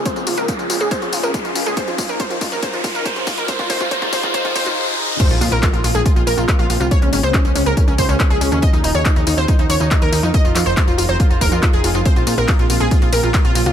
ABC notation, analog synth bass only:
X:1
M:4/4
L:1/16
Q:1/4=140
K:Bbm
V:1 name="Analog synth bass" clef=bass
z D,, A,,, D,, z D,, D,, D,, z D,, A,,, D,, z A,,, D,, D,, | z E,, z E,, z E,, E,, E,, z E,, E,,, E,, z D,, E,, E,, | z F,,, F,, F,,, z F,,, F,,, F,,, z F,,, F,, F,,, z4 | z B,,, B,, B,,, z B,,, B,,, B,,, z B,,, B,,, B,,, z B,,, B,,, C,, |
z D,, A,,, D,, z D,, D,, D,, z D,, D,, D,, z D,, D,, E,, | z E,, E,,, E,, z E,, E,, E,, z E,, E,, E,, z E,, E,, F,, | z F,,, F,, F,,, z F,,, F,,, F,,, z F,,, F,,, F,, z F,,, F,,, F,,, | z B,,, B,, B,,, z B,,, B,,, B,,, z B,,, B,,, B,,, z B,,, B,,, C,, |]